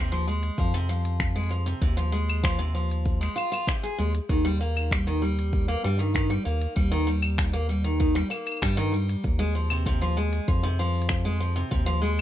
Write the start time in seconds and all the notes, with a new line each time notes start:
Already playing: D#2 C3
0.12 F3, closed hi-hat
0.28 G#3, shaker
0.43 closed hi-hat, shaker
0.58 F2 F3, kick, shaker
0.74 C3, closed hi-hat
0.89 F3, shaker
1.05 closed hi-hat, shaker
1.20 finger snap, kick, shaker
1.36 G#3, closed hi-hat
1.39 closed hi-hat
1.41 closed hi-hat
1.44 closed hi-hat
1.47 closed hi-hat
1.49 F3, closed hi-hat, shaker
1.66 C3, closed hi-hat, shaker
1.82 D#2 C3, kick, shaker
1.97 F3, closed hi-hat
2.12 G#3, shaker
2.29 closed hi-hat, claves, shaker
2.43 F3, finger snap, kick, shaker
2.59 C3, closed hi-hat
2.75 F3, shaker
2.91 closed hi-hat, shaker
3.06 kick, shaker
3.21 G#3, finger snap, closed hi-hat
3.36 F4, claves
3.52 F4, closed hi-hat, claves, shaker
3.67 C3, finger snap, kick, shaker
3.83 G#4, closed hi-hat
3.98 D#2 G#3, shaker
4.15 closed hi-hat, shaker
4.29 D#2 D#3, kick, shaker
4.45 G3, closed hi-hat
4.61 A#3, shaker
4.77 closed hi-hat, claves, shaker
4.91 G3, finger snap, kick, shaker
5.07 D#3, closed hi-hat
5.22 G3, shaker
5.39 closed hi-hat, shaker
5.53 kick, shaker
5.68 A#3, closed hi-hat
5.84 G2 G3, shaker
5.99 D#3, closed hi-hat, shaker
6.14 D#3, finger snap, kick, shaker
6.30 G3, closed hi-hat
6.45 D#2 A#3, shaker
6.62 closed hi-hat, shaker
6.76 D#2 G3, kick, shaker
6.91 D#3, closed hi-hat
7.07 G3, shaker
7.22 closed hi-hat, claves, shaker
7.38 finger snap, kick, shaker
7.53 A#3, closed hi-hat
7.69 G3, shaker
7.84 D#3, closed hi-hat, shaker
8.00 D#3, kick, shaker
8.15 G3, finger snap, closed hi-hat
8.30 A#3, claves, shaker
8.47 closed hi-hat, claves, shaker
8.52 claves
8.57 claves
8.62 G2 G3, finger snap, kick, claves, shaker
8.68 claves
8.73 D#3, claves
8.78 closed hi-hat
8.92 G3, shaker
9.09 closed hi-hat, shaker
9.24 D#2, kick, shaker
9.39 G#3, closed hi-hat
9.55 F3, shaker
9.70 C3, closed hi-hat, claves, shaker
9.86 C3, kick, shaker
10.01 F3, closed hi-hat
10.17 G#3, shaker
10.33 closed hi-hat
10.48 F2 F3, kick, shaker
10.63 C3, closed hi-hat
10.79 F3, shaker
10.94 shaker
11.02 closed hi-hat
11.09 finger snap, kick, shaker
11.25 G#3, closed hi-hat
11.40 F3, shaker
11.56 C3, shaker
11.71 D#2 C3, kick, shaker
11.86 F3, closed hi-hat
12.02 G#3, shaker